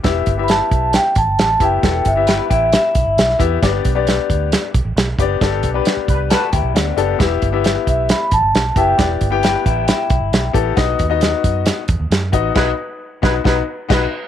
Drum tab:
CC |----------------|----------------|----------------|----------------|
HH |x-x-x-x-x-x-x-x-|x-x-x-x-x-x-x-x-|x-x-x-x-x-x-x-x-|x-x-x-x-x-x-x-x-|
SD |o---o---o---o---|o---o---o---oo--|o---o---o---o---|o---o---o---o---|
BD |o-o---o---o---o-|o-o---o---o---o-|o-o---o---o---o-|o-o---o---o-----|

CC |----------------|----------------|----------------|x-----------x---|
HH |x-x-x-x-x-x-x-x-|x-x-x-x-x-x-x-x-|x-x-x-x-x-x-x-x-|----------------|
SD |o---o---o---o---|o---o---o---o---|o---o---o---o---|o-----o-o---o---|
BD |o-o---o---o---o-|o-o---o---o---o-|o-o---o---o---o-|o-----o-o---o---|